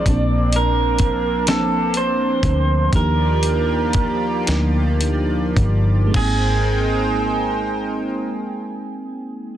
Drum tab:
CC |------|------|x-----|
HH |xxxxxx|xxxxxx|------|
SD |---o--|---o--|------|
BD |o-o--o|o-o--o|o-----|